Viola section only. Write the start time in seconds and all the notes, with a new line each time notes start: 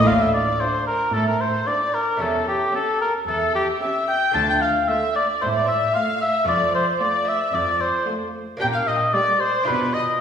0.61 D4
1.68 D4
2.74 C#4
3.82 C#4
4.89 A3
5.96 A3
7.02 A3
8.07 A3
9.13 G3